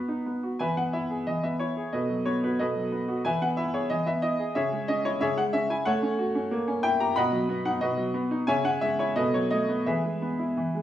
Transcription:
grand piano
Already playing: B3
0.08 D#4
0.26 B3
0.43 F#4
0.59 E3 B4 E5 G#5
0.77 B3 F#5
0.93 E4 E5
1.10 G#4
1.27 E3 D#5
1.43 B3 E5
1.60 E4 C#5
1.77 G#4
1.93 B2 A4 B4 D#5
2.10 F#3
2.25 B3 C#5
2.43 F#4 B4
2.59 B2 A4 B4 D#5
2.75 F#3
2.92 B3
3.08 F#4
3.24 E3 B4 E5 G#5
3.41 B3 F#5
3.57 E4 E5
3.74 G#4 C#5
3.90 E3 D#5
4.06 B3 E5
4.22 E4 D#5
4.39 G#4
4.55 C#3 G#4 C#5 E5
4.72 G#3
4.88 C#4 D#5
5.04 E4 C#5
5.21 C#3 G#4 C#5 E5
5.37 G#3 F#5
5.53 C#4 E5
5.70 E4 G#5
5.85 A3 A4 C#5 F#5
6.02 C#4
6.19 F#4
6.35 C#4
6.51 A#3
6.68 C#4
6.83 E4 G5
7.00 G4 A#5
7.16 B2 D#5 F#5 B5
7.32 F#3
7.49 B3
7.65 D#4 F#5
7.81 B2 F#4 B4 D#5
7.97 F#3
8.14 B3
8.31 D#4
8.47 C#3 C#5 E5 G#5
8.65 C#4 F#5
8.81 G#3 E5
8.99 E4 C#5
9.16 B2 A4 B4 D#5
9.34 F#3 C#5
9.51 A3 D#5
9.69 B3
9.86 E3 G#4 B4 E5
10.04 G#3
10.22 B3
10.39 E4
10.57 E3
10.75 G#3

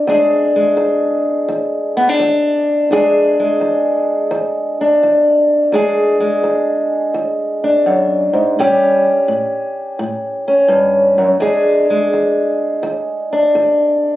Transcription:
steel-string acoustic guitar
0.07 E2 G#3 D4 G#4
0.56 G#3
0.77 E2
1.48 E2
1.97 B3
2.09 D4
2.20 E2
2.91 E2 G#3 D4 G#4
3.40 G#3
3.61 E2
4.31 E2
4.81 D4
5.03 E2
5.72 E2 G#3 D4 G#4
6.20 G#3
6.44 E2
7.14 E2
7.64 D4
7.86 F#2
8.33 G#2
8.59 A2 G3 C#4 G4
9.28 A2
9.99 A2
10.48 C#4
10.68 G2
11.18 F#2
11.40 E2 G#3 D4 G#4
11.90 G#3
12.13 E2
12.83 E2
13.33 D4
13.55 E2

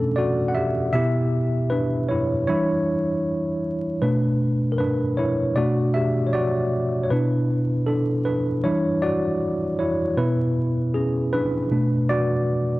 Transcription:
tine electric piano
Already playing: B2 A3 C#4 D4 A4
0.16 F#4 D5
0.48 F#5
0.55 G4 E5
0.93 B2 B3 E4 G4 E5
1.70 D4 B4
2.09 E4 C#5
2.47 E3 G3 D4 E4 C#5
4.02 B2 A3 D4 B4
4.72 A#4
4.78 D4 B4
5.17 E4 C#5
5.56 B2 A3 D4 F#4 D5
5.94 G4 E5
6.27 C#5
6.33 F#4 D5
7.03 C#5
7.10 B2 B3 D4 E4 B4
7.87 D4 A4
8.25 D4 B4
8.63 E3 G3 D4 E4 C#5
9.02 F#4 D5
9.79 E4 C#5
10.17 B2 B3 E4 B4
10.94 C#4 G#4
11.33 D4 B4
11.71 B2 A3 D4
12.09 F#4 D5

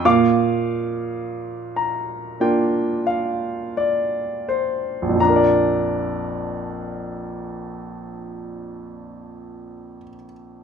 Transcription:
grand piano
0.05 A#2 F5 D6
1.76 A#5
2.40 A#3 D4 F4 G5
3.07 F5
3.77 D5
4.49 C5
5.02 A#1
5.09 F2
5.15 F3
5.20 D4 A#5
5.29 A#4
5.36 D5

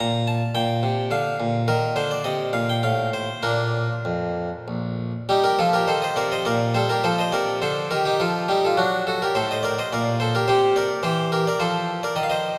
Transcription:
harpsichord
0.00 A#2 A#5
0.27 A5
0.55 A#2 G5
0.83 C3
1.11 D3 F5
1.40 A#2
1.68 D#3 A#4
1.96 D3 C5
2.11 D5
2.24 C3 D#5
2.53 A#2 F5
2.69 G5
2.83 A2 F5
3.13 C5
3.43 A#2 A#3 D4 A#4
4.05 F2
4.68 A#1
5.29 G3 D#4 G4
5.44 G4 A#4
5.59 F3 F4 A4
5.73 G4 A#4
5.87 D#3 A4 C5
6.02 C5 D#5
6.16 C3 A#4 D5
6.32 C5 D#5
6.45 A#2 A#4 D5
6.74 G3 A4 C5
6.89 G4 A#4
7.04 F3 A4 C5
7.18 C5 D#5
7.32 C3 A#4 D5
7.62 D3 A4 C5
7.91 D#3 G4 A#4
8.05 D#4 G4
8.20 F3 F4 A4
8.48 G3 D#4 G4
8.65 F4 A4
8.77 F#3 D4 F#4
9.07 F#4 A4
9.22 G4 A#4
9.35 A2 A4 C5
9.51 C5 D#5
9.63 A#4 D5
9.79 C5 D#5
9.92 A#2 A#4 D5
10.20 A4 C5
10.35 G4 A#4
10.48 C3 G4 C5
10.76 A#4 D5
11.03 E3 G4 C5
11.32 G4 A#4
11.47 A#4 D5
11.60 F3 A4 C5
12.03 A#4 D5
12.16 D#3 D#5
12.23 F5
12.30 C5 D#5

